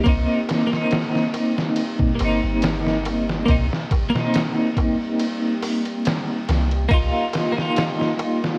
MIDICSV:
0, 0, Header, 1, 6, 480
1, 0, Start_track
1, 0, Key_signature, -3, "minor"
1, 0, Tempo, 857143
1, 31, Time_signature, 4, 2, 24, 8
1, 4806, End_track
2, 0, Start_track
2, 0, Title_t, "Synth drone"
2, 0, Program_c, 0, 95
2, 32, Note_on_c, 0, 55, 74
2, 32, Note_on_c, 0, 67, 76
2, 4806, Note_off_c, 0, 55, 0
2, 4806, Note_off_c, 0, 67, 0
2, 4806, End_track
3, 0, Start_track
3, 0, Title_t, "Clean electric guitar"
3, 0, Program_c, 1, 27
3, 22, Note_on_c, 1, 58, 88
3, 35, Note_on_c, 1, 60, 75
3, 48, Note_on_c, 1, 63, 91
3, 364, Note_off_c, 1, 58, 0
3, 370, Note_off_c, 1, 60, 0
3, 375, Note_on_c, 1, 58, 77
3, 377, Note_off_c, 1, 63, 0
3, 401, Note_on_c, 1, 60, 68
3, 429, Note_on_c, 1, 63, 88
3, 1192, Note_off_c, 1, 58, 0
3, 1205, Note_on_c, 1, 58, 73
3, 1206, Note_off_c, 1, 60, 0
3, 1220, Note_off_c, 1, 63, 0
3, 1231, Note_on_c, 1, 60, 69
3, 1258, Note_on_c, 1, 63, 86
3, 1911, Note_off_c, 1, 58, 0
3, 1924, Note_off_c, 1, 60, 0
3, 1936, Note_on_c, 1, 58, 82
3, 1938, Note_off_c, 1, 63, 0
3, 1950, Note_on_c, 1, 60, 73
3, 1964, Note_on_c, 1, 63, 87
3, 2043, Note_off_c, 1, 58, 0
3, 2050, Note_off_c, 1, 60, 0
3, 2056, Note_off_c, 1, 63, 0
3, 2294, Note_on_c, 1, 58, 85
3, 2322, Note_on_c, 1, 60, 81
3, 2349, Note_on_c, 1, 63, 92
3, 3832, Note_off_c, 1, 58, 0
3, 3846, Note_off_c, 1, 60, 0
3, 3857, Note_on_c, 1, 58, 81
3, 3859, Note_off_c, 1, 63, 0
3, 3870, Note_on_c, 1, 63, 80
3, 3884, Note_on_c, 1, 65, 97
3, 4201, Note_off_c, 1, 58, 0
3, 4207, Note_off_c, 1, 63, 0
3, 4212, Note_on_c, 1, 58, 76
3, 4215, Note_off_c, 1, 65, 0
3, 4238, Note_on_c, 1, 63, 68
3, 4265, Note_on_c, 1, 65, 86
3, 4806, Note_off_c, 1, 58, 0
3, 4806, Note_off_c, 1, 63, 0
3, 4806, Note_off_c, 1, 65, 0
3, 4806, End_track
4, 0, Start_track
4, 0, Title_t, "808-style bass"
4, 0, Program_c, 2, 38
4, 33, Note_on_c, 2, 36, 100
4, 144, Note_off_c, 2, 36, 0
4, 1234, Note_on_c, 2, 31, 100
4, 1345, Note_off_c, 2, 31, 0
4, 1363, Note_on_c, 2, 31, 80
4, 1932, Note_off_c, 2, 31, 0
4, 1950, Note_on_c, 2, 36, 98
4, 2063, Note_off_c, 2, 36, 0
4, 3633, Note_on_c, 2, 36, 82
4, 3845, Note_off_c, 2, 36, 0
4, 3870, Note_on_c, 2, 36, 96
4, 3983, Note_off_c, 2, 36, 0
4, 4806, End_track
5, 0, Start_track
5, 0, Title_t, "Darbuka"
5, 34, Note_on_c, 9, 63, 53
5, 90, Note_off_c, 9, 63, 0
5, 158, Note_on_c, 9, 63, 26
5, 214, Note_off_c, 9, 63, 0
5, 274, Note_on_c, 9, 63, 90
5, 330, Note_off_c, 9, 63, 0
5, 398, Note_on_c, 9, 63, 32
5, 454, Note_off_c, 9, 63, 0
5, 514, Note_on_c, 9, 63, 48
5, 570, Note_off_c, 9, 63, 0
5, 642, Note_on_c, 9, 63, 23
5, 698, Note_off_c, 9, 63, 0
5, 751, Note_on_c, 9, 63, 76
5, 807, Note_off_c, 9, 63, 0
5, 879, Note_on_c, 9, 63, 41
5, 935, Note_off_c, 9, 63, 0
5, 992, Note_on_c, 9, 63, 47
5, 1048, Note_off_c, 9, 63, 0
5, 1121, Note_on_c, 9, 63, 25
5, 1123, Note_on_c, 9, 64, 54
5, 1177, Note_off_c, 9, 63, 0
5, 1179, Note_off_c, 9, 64, 0
5, 1234, Note_on_c, 9, 63, 89
5, 1290, Note_off_c, 9, 63, 0
5, 1360, Note_on_c, 9, 63, 40
5, 1416, Note_off_c, 9, 63, 0
5, 1471, Note_on_c, 9, 63, 50
5, 1527, Note_off_c, 9, 63, 0
5, 1604, Note_on_c, 9, 63, 23
5, 1660, Note_off_c, 9, 63, 0
5, 1714, Note_on_c, 9, 63, 93
5, 1770, Note_off_c, 9, 63, 0
5, 1842, Note_on_c, 9, 63, 33
5, 1898, Note_off_c, 9, 63, 0
5, 1952, Note_on_c, 9, 63, 53
5, 1952, Note_on_c, 9, 64, 64
5, 2008, Note_off_c, 9, 63, 0
5, 2008, Note_off_c, 9, 64, 0
5, 2084, Note_on_c, 9, 63, 26
5, 2140, Note_off_c, 9, 63, 0
5, 2195, Note_on_c, 9, 63, 92
5, 2251, Note_off_c, 9, 63, 0
5, 2322, Note_on_c, 9, 64, 52
5, 2325, Note_on_c, 9, 63, 31
5, 2378, Note_off_c, 9, 64, 0
5, 2381, Note_off_c, 9, 63, 0
5, 2437, Note_on_c, 9, 63, 57
5, 2493, Note_off_c, 9, 63, 0
5, 2560, Note_on_c, 9, 63, 23
5, 2616, Note_off_c, 9, 63, 0
5, 2676, Note_on_c, 9, 63, 92
5, 2732, Note_off_c, 9, 63, 0
5, 2803, Note_on_c, 9, 63, 36
5, 2859, Note_off_c, 9, 63, 0
5, 2910, Note_on_c, 9, 63, 55
5, 2966, Note_off_c, 9, 63, 0
5, 3043, Note_on_c, 9, 63, 23
5, 3099, Note_off_c, 9, 63, 0
5, 3150, Note_on_c, 9, 63, 85
5, 3206, Note_off_c, 9, 63, 0
5, 3281, Note_on_c, 9, 63, 38
5, 3337, Note_off_c, 9, 63, 0
5, 3400, Note_on_c, 9, 63, 50
5, 3456, Note_off_c, 9, 63, 0
5, 3526, Note_on_c, 9, 63, 25
5, 3582, Note_off_c, 9, 63, 0
5, 3633, Note_on_c, 9, 63, 91
5, 3689, Note_off_c, 9, 63, 0
5, 3760, Note_on_c, 9, 63, 34
5, 3816, Note_off_c, 9, 63, 0
5, 3873, Note_on_c, 9, 63, 54
5, 3929, Note_off_c, 9, 63, 0
5, 4002, Note_on_c, 9, 63, 30
5, 4058, Note_off_c, 9, 63, 0
5, 4106, Note_on_c, 9, 63, 87
5, 4162, Note_off_c, 9, 63, 0
5, 4237, Note_on_c, 9, 63, 32
5, 4293, Note_off_c, 9, 63, 0
5, 4352, Note_on_c, 9, 63, 58
5, 4408, Note_off_c, 9, 63, 0
5, 4480, Note_on_c, 9, 63, 28
5, 4536, Note_off_c, 9, 63, 0
5, 4588, Note_on_c, 9, 63, 91
5, 4644, Note_off_c, 9, 63, 0
5, 4718, Note_on_c, 9, 63, 37
5, 4774, Note_off_c, 9, 63, 0
5, 4806, End_track
6, 0, Start_track
6, 0, Title_t, "Drums"
6, 32, Note_on_c, 9, 36, 102
6, 33, Note_on_c, 9, 51, 76
6, 88, Note_off_c, 9, 36, 0
6, 89, Note_off_c, 9, 51, 0
6, 275, Note_on_c, 9, 51, 64
6, 284, Note_on_c, 9, 38, 53
6, 331, Note_off_c, 9, 51, 0
6, 340, Note_off_c, 9, 38, 0
6, 410, Note_on_c, 9, 38, 34
6, 466, Note_off_c, 9, 38, 0
6, 509, Note_on_c, 9, 51, 81
6, 519, Note_on_c, 9, 38, 114
6, 565, Note_off_c, 9, 51, 0
6, 575, Note_off_c, 9, 38, 0
6, 647, Note_on_c, 9, 38, 37
6, 703, Note_off_c, 9, 38, 0
6, 750, Note_on_c, 9, 51, 64
6, 806, Note_off_c, 9, 51, 0
6, 886, Note_on_c, 9, 38, 54
6, 942, Note_off_c, 9, 38, 0
6, 986, Note_on_c, 9, 51, 82
6, 1042, Note_off_c, 9, 51, 0
6, 1116, Note_on_c, 9, 36, 95
6, 1172, Note_off_c, 9, 36, 0
6, 1226, Note_on_c, 9, 51, 65
6, 1282, Note_off_c, 9, 51, 0
6, 1467, Note_on_c, 9, 51, 79
6, 1476, Note_on_c, 9, 38, 108
6, 1523, Note_off_c, 9, 51, 0
6, 1532, Note_off_c, 9, 38, 0
6, 1604, Note_on_c, 9, 38, 38
6, 1660, Note_off_c, 9, 38, 0
6, 1710, Note_on_c, 9, 51, 63
6, 1766, Note_off_c, 9, 51, 0
6, 1845, Note_on_c, 9, 38, 43
6, 1901, Note_off_c, 9, 38, 0
6, 1949, Note_on_c, 9, 36, 104
6, 1949, Note_on_c, 9, 51, 80
6, 2005, Note_off_c, 9, 36, 0
6, 2005, Note_off_c, 9, 51, 0
6, 2087, Note_on_c, 9, 38, 37
6, 2143, Note_off_c, 9, 38, 0
6, 2188, Note_on_c, 9, 51, 65
6, 2189, Note_on_c, 9, 36, 94
6, 2244, Note_off_c, 9, 51, 0
6, 2245, Note_off_c, 9, 36, 0
6, 2326, Note_on_c, 9, 38, 45
6, 2382, Note_off_c, 9, 38, 0
6, 2428, Note_on_c, 9, 51, 82
6, 2438, Note_on_c, 9, 38, 117
6, 2484, Note_off_c, 9, 51, 0
6, 2494, Note_off_c, 9, 38, 0
6, 2669, Note_on_c, 9, 36, 88
6, 2669, Note_on_c, 9, 51, 66
6, 2725, Note_off_c, 9, 36, 0
6, 2725, Note_off_c, 9, 51, 0
6, 2909, Note_on_c, 9, 51, 81
6, 2965, Note_off_c, 9, 51, 0
6, 3150, Note_on_c, 9, 46, 76
6, 3206, Note_off_c, 9, 46, 0
6, 3278, Note_on_c, 9, 51, 39
6, 3334, Note_off_c, 9, 51, 0
6, 3389, Note_on_c, 9, 51, 81
6, 3399, Note_on_c, 9, 38, 104
6, 3445, Note_off_c, 9, 51, 0
6, 3455, Note_off_c, 9, 38, 0
6, 3633, Note_on_c, 9, 51, 62
6, 3642, Note_on_c, 9, 38, 49
6, 3689, Note_off_c, 9, 51, 0
6, 3698, Note_off_c, 9, 38, 0
6, 3760, Note_on_c, 9, 51, 40
6, 3816, Note_off_c, 9, 51, 0
6, 3869, Note_on_c, 9, 36, 106
6, 3869, Note_on_c, 9, 51, 83
6, 3925, Note_off_c, 9, 36, 0
6, 3925, Note_off_c, 9, 51, 0
6, 4108, Note_on_c, 9, 51, 65
6, 4117, Note_on_c, 9, 38, 55
6, 4164, Note_off_c, 9, 51, 0
6, 4173, Note_off_c, 9, 38, 0
6, 4246, Note_on_c, 9, 38, 37
6, 4302, Note_off_c, 9, 38, 0
6, 4348, Note_on_c, 9, 51, 77
6, 4357, Note_on_c, 9, 38, 107
6, 4404, Note_off_c, 9, 51, 0
6, 4413, Note_off_c, 9, 38, 0
6, 4487, Note_on_c, 9, 38, 38
6, 4543, Note_off_c, 9, 38, 0
6, 4588, Note_on_c, 9, 51, 63
6, 4644, Note_off_c, 9, 51, 0
6, 4727, Note_on_c, 9, 38, 52
6, 4783, Note_off_c, 9, 38, 0
6, 4806, End_track
0, 0, End_of_file